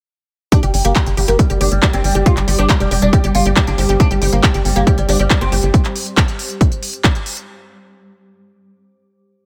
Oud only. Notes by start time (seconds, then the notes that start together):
0.52 D4
0.63 G3
0.74 G3
0.85 A#3
0.96 G3
1.06 G3
1.17 G3
1.28 A#3
1.39 G3
1.50 G3
1.61 D4
1.72 G3
1.83 G3
1.93 C4
2.04 G3
2.15 G3
2.26 F4
2.37 G3
2.48 G3
2.59 D4
2.69 G3
2.80 G3
2.91 G3
3.02 D4
3.13 G3
3.24 G3
3.35 F4
3.46 G3
3.56 G3
3.67 D4
3.78 G3
3.89 G3
4.00 D4
4.11 G3
4.22 G3
4.33 A#3
4.54 G3
4.65 G3
4.76 A#3
4.87 G3
4.98 G3
5.09 D4
5.20 G3
5.41 C4
5.52 G3
5.63 G3